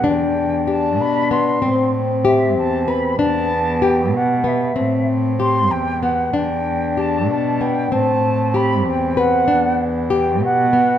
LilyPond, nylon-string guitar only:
\new Staff \with { instrumentName = "Nylon-string guitar" } { \time 5/8 \key e \minor \tempo 4 = 96 d'4 g'4 b8 | c'4 g'4 b'8 | d'4 g'4 b8 | c'4 g'4 b8 |
d'4 g'4 b8 | c'4 g'4 b'8 | d'4 g'4 b8 | }